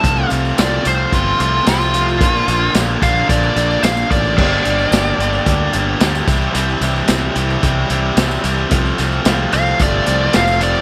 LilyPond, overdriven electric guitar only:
\new Staff \with { instrumentName = "Overdriven electric guitar" } { \time 4/4 \key f \major \tempo 4 = 111 <c f a c' f'>8 <c f a c' f'>8 <c f a c' f'>8 <c f a c' f'>8 <c f a c' f'>8 <c f a c' f'>8 <c f a c' f'>8 <c f a c' f'>8 | <bes, d bes d' f'>8 <bes, d bes d' f'>8 <bes, d bes d' f'>8 <bes, d bes d' f'>8 <bes, d bes d' f'>8 <bes, d bes d' f'>8 <bes, d bes d' f'>8 <bes, d bes d' f'>8 | <g, d g bes d' g'>8 <g, d g bes d' g'>8 <g, d g bes d' g'>8 <g, d g bes d' g'>8 <g, d g bes d' g'>8 <g, d g bes d' g'>8 <g, d g bes d' g'>8 <c e g c' e'>8 | <c e g c' e'>8 <c e g c' e'>8 <c e g c' e'>8 <c e g c' e'>8 <c e g c' e'>8 <c e g c' e'>8 <c e g c' e'>8 <c e g c' e'>8 |
<c f a c' f'>8 <c f a c' f'>8 <c f a c' f'>8 <c f a c' f'>8 <c f a c' f'>8 <c f a c' f'>8 <c f a c' f'>8 <c f a c' f'>8 | }